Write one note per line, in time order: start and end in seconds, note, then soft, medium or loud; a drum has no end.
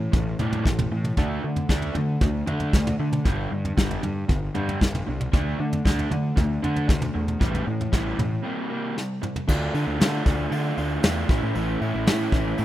0.00 0.10 A2 medium
0.00 0.11 E3 medium
0.12 0.34 A1 medium
0.12 0.36 A2 medium
0.12 0.36 E3 medium
0.12 kick loud
0.12 floor tom medium
0.39 0.63 A2 medium
0.39 0.67 A2 medium
0.39 0.64 E3 medium
0.39 0.64 G3 medium
0.39 floor tom medium
0.39 mid tom medium
0.53 floor tom medium
0.65 0.86 A1 medium
0.65 0.88 A2 medium
0.65 0.89 E3 medium
0.65 kick medium
0.65 snare medium
0.79 floor tom medium
0.79 mid tom medium
0.91 1.11 A2 medium
0.91 1.15 A2 medium
0.91 1.15 E3 medium
1.04 mid tom medium
1.17 1.37 D2 loud
1.17 1.42 D3 medium
1.17 1.42 A3 medium
1.17 1.42 D4 medium
1.17 kick medium
1.17 floor tom medium
1.44 1.67 D3 medium
1.44 1.64 D3 medium
1.44 1.67 A3 medium
1.56 floor tom medium
1.69 1.90 D2 medium
1.69 1.94 D3 medium
1.69 1.94 A3 medium
1.69 1.94 D4 loud
1.69 kick medium
1.69 snare medium
1.82 floor tom medium
1.95 2.18 D3 medium
1.95 2.16 D3 medium
1.95 2.19 A3 medium
1.95 floor tom medium
2.21 2.41 D2 loud
2.21 2.45 D3 medium
2.21 2.45 A3 medium
2.21 kick loud
2.21 floor tom medium
2.46 2.71 D3 medium
2.46 2.75 D3 medium
2.46 2.72 A3 medium
2.46 2.72 D4 medium
2.46 floor tom medium
2.60 floor tom medium
2.73 2.93 D2 medium
2.73 2.97 D3 medium
2.73 2.97 A3 medium
2.73 kick loud
2.73 snare medium
2.87 floor tom medium
2.87 mid tom medium
3.00 3.23 D3 medium
3.00 3.19 D3 medium
3.00 3.23 A3 medium
3.12 mid tom medium
3.25 3.46 G1 medium
3.25 3.49 G2 medium
3.25 3.50 D3 medium
3.25 3.50 G3 medium
3.25 kick medium
3.25 floor tom medium
3.52 3.75 G2 medium
3.52 3.72 G2 medium
3.52 3.75 D3 medium
3.65 floor tom medium
3.77 3.98 G1 medium
3.77 4.01 G2 medium
3.77 4.02 D3 medium
3.77 4.02 G3 medium
3.77 kick loud
3.77 snare medium
3.91 floor tom medium
4.02 4.26 G2 medium
4.02 4.23 G2 medium
4.02 4.26 D3 medium
4.02 floor tom medium
4.29 4.49 G1 medium
4.29 4.52 G2 medium
4.29 4.52 D3 medium
4.29 kick loud
4.29 floor tom medium
4.54 4.79 G2 medium
4.54 4.83 G2 medium
4.54 4.79 D3 medium
4.54 4.79 G3 medium
4.54 floor tom medium
4.69 floor tom medium
4.80 5.01 G1 loud
4.80 5.04 G2 medium
4.80 5.04 D3 medium
4.80 kick medium
4.80 snare medium
4.95 floor tom medium
4.95 mid tom medium
5.07 5.28 C2 medium
5.07 5.30 G2 medium
5.07 5.30 D3 medium
5.21 mid tom medium
5.32 5.53 D2 loud
5.32 5.57 D3 medium
5.32 5.57 A3 loud
5.32 5.57 D4 medium
5.32 kick loud
5.32 floor tom medium
5.58 5.82 D3 medium
5.58 5.79 D3 medium
5.58 5.82 A3 medium
5.73 floor tom medium
5.85 6.05 D2 loud
5.85 6.09 D3 medium
5.85 6.09 A3 medium
5.85 6.10 D4 medium
5.85 kick loud
5.85 snare medium
5.99 floor tom medium
6.10 6.31 D3 medium
6.10 6.34 D3 medium
6.10 6.34 A3 medium
6.10 floor tom medium
6.36 6.57 D2 medium
6.36 6.60 D3 medium
6.36 6.60 A3 medium
6.36 kick loud
6.36 floor tom medium
6.63 6.87 D3 medium
6.63 6.90 D3 medium
6.63 6.88 A3 medium
6.63 6.88 D4 medium
6.63 floor tom medium
6.76 floor tom medium
6.88 7.09 D2 medium
6.88 7.12 D3 medium
6.88 7.12 A3 medium
6.88 kick loud
6.88 snare medium
7.02 floor tom medium
7.02 mid tom medium
7.14 7.35 E2 medium
7.14 7.38 D3 medium
7.14 7.38 A3 medium
7.28 mid tom medium
7.40 7.61 A1 medium
7.40 7.65 A2 medium
7.40 7.65 E3 medium
7.40 7.65 G3 loud
7.40 kick loud
7.40 floor tom medium
7.55 floor tom medium
7.66 7.90 A2 medium
7.66 7.87 A2 medium
7.66 7.90 E3 medium
7.81 floor tom medium
7.92 8.13 A1 medium
7.92 8.17 A2 medium
7.92 8.17 E3 loud
7.92 8.17 G3 loud
7.92 kick medium
7.92 snare medium
8.19 8.39 A2 medium
8.19 8.42 A2 medium
8.19 8.42 E3 medium
8.19 floor tom medium
8.19 mid tom medium
8.44 8.68 C3 medium
8.44 8.69 G3 medium
8.44 8.69 A#3 medium
8.70 8.95 C3 medium
8.70 8.95 G3 medium
8.70 8.95 A#3 medium
8.96 9.19 C3 medium
8.96 9.20 G3 medium
8.96 snare medium
9.22 9.45 C3 medium
9.22 9.45 G3 medium
9.22 mid tom medium
9.36 floor tom medium
9.48 9.69 D2 medium
9.48 9.98 D3 medium
9.48 9.76 A3 medium
9.48 9.74 D4 loud
9.48 9.73 F4 medium
9.48 kick medium
9.48 crash loud
9.74 9.84 D3 medium
9.74 10.00 A3 medium
9.74 10.00 D4 medium
9.74 10.00 F4 medium
9.74 open hi-hat medium
9.87 10.02 D2 medium
9.99 10.50 D3 medium
9.99 10.20 D3 loud
9.99 10.51 A3 medium
9.99 10.51 D4 medium
9.99 10.52 F4 medium
9.99 snare loud
9.99 open hi-hat medium
10.26 10.46 D2 loud
10.26 kick medium
10.26 open hi-hat medium
10.51 11.02 D3 medium
10.51 10.71 D3 medium
10.51 10.79 A3 medium
10.51 10.77 D4 medium
10.51 10.76 F4 loud
10.51 open hi-hat medium
10.77 10.98 D2 medium
10.77 11.03 A3 medium
10.77 11.03 D4 medium
10.77 11.04 F4 medium
10.77 open hi-hat medium
11.03 11.24 E2 medium
11.03 11.27 D3 medium
11.03 11.30 A3 medium
11.03 11.28 D4 medium
11.03 11.28 F4 medium
11.03 snare loud
11.03 open hi-hat medium
11.29 11.39 A1 medium
11.29 11.53 A2 medium
11.29 11.54 E3 medium
11.29 11.56 A3 medium
11.29 11.55 C#4 medium
11.29 11.56 E4 medium
11.29 kick loud
11.29 open hi-hat medium
11.43 11.52 A2 medium
11.55 11.75 A1 loud
11.55 12.06 A2 medium
11.55 12.05 E3 medium
11.55 11.83 A3 loud
11.55 11.81 C#4 medium
11.55 11.80 E4 loud
11.55 open hi-hat medium
11.81 11.91 A2 medium
11.81 12.07 A3 medium
11.81 12.06 C#4 medium
11.81 12.07 E4 medium
11.81 open hi-hat medium
11.95 12.09 A1 medium
12.06 12.27 A2 loud
12.06 12.57 E3 medium
12.06 12.58 A3 medium
12.06 12.58 C#4 medium
12.06 12.59 E4 medium
12.06 snare loud
12.06 open hi-hat medium
12.32 12.53 A1 medium
12.32 kick medium
12.32 open hi-hat medium
12.58 12.65 A2 loud
12.58 12.65 A2 medium
12.58 12.65 E3 loud
12.58 12.65 A3 loud
12.58 12.65 C#4 medium
12.58 12.65 E4 loud
12.58 open hi-hat medium